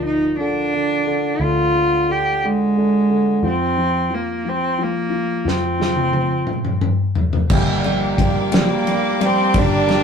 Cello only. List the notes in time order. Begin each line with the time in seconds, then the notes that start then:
0.06 D#4
0.39 D4
1.42 F4
2.11 G4
2.45 G#3
3.47 C4
4.14 A#3
4.49 C4
4.83 A#3
5.48 C4
8.57 A#3
9.25 C4
9.59 D4